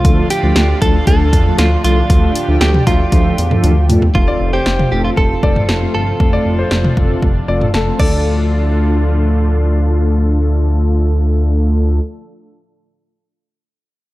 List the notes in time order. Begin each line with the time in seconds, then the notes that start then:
Already playing: F4
0.05 D2 A2 D3 F3 A3 D4 F4 A4, kick, closed hi-hat
0.30 G4, closed hi-hat
0.43 D2 F3 A3 D4 F4 A4
0.56 D2, snare, closed hi-hat
0.82 D2 F3 A3 D4 F4 A4, kick, closed hi-hat
1.07 D2 F3 A3 D4 F4 A4, kick, closed hi-hat
1.33 E2, kick, closed hi-hat
1.46 F3 A3 D4 F4 A4
1.58 D2 F4, snare, closed hi-hat
1.84 C2 F3 A3 D4 F4 A4, closed hi-hat
2.10 D2 F3 A3 D4 F4 G4 A4, kick, closed hi-hat
2.35 closed hi-hat
2.48 D2 F3 A3 D4 F4 A4
2.61 D2 G4, snare, closed hi-hat
2.74 mid tom
2.87 D2 F3 A3 D4 F4 A4, kick, closed hi-hat, cowbell
3.12 D2 F3 A3 D4 F4 A4, kick, closed hi-hat
3.38 E2, closed hi-hat
3.51 F3 A3 D4 F4 A4, mid tom
3.64 D2, closed hi-hat, high tom
3.89 E2 F3 A3 D4 F4 A4, closed hi-hat, mid tom
4.02 floor tom
4.15 F1 A2 C3 F3 A3 C4 F4 A4, kick
4.28 D5
4.41 F1
4.53 G4 C5
4.66 F1, snare
4.79 mid tom
4.92 F1 A3 C4 F4 G4 A4
5.05 F4
5.17 F1 A4, kick
5.43 F1 A3 C4 F4 A4 D5, kick
5.56 mid tom
5.69 F1, snare
5.81 A3 C4 F4 A4
5.94 G1 A4
6.20 F1 A3 C4 D4 F4 A4, kick
6.33 D5
6.46 F1
6.59 C5
6.71 F1, snare
6.84 mid tom
6.97 F1 A3 C4 F4 A4, kick
7.22 F1, kick
7.48 F1 A3 C4 F4 A4 D5
7.61 mid tom
7.74 F1 A4, snare
7.87 A3 C4 F4 C5
7.99 D2 A2 D3 F3 A3 D4 F4 A4 D5, kick, crash